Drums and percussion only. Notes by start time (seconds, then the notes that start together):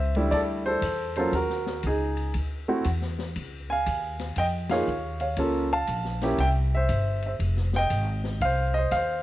0.15 ride
0.32 ride
0.82 hi-hat pedal, ride
1.16 ride
1.33 ride
1.50 snare
1.67 snare
1.83 hi-hat pedal, ride
2.17 ride
2.34 ride
2.84 hi-hat pedal, ride
3.02 snare
3.19 snare
3.36 ride
3.86 hi-hat pedal, ride
4.19 snare, ride
4.36 ride
4.69 snare, ride
4.87 hi-hat pedal
5.20 ride
5.37 ride
5.87 hi-hat pedal, ride
6.05 snare
6.21 snare, ride
6.38 ride
6.89 hi-hat pedal, ride
7.22 ride
7.40 ride
7.57 snare
7.73 snare
7.90 hi-hat pedal, ride
8.24 snare
8.41 ride
8.91 hi-hat pedal, ride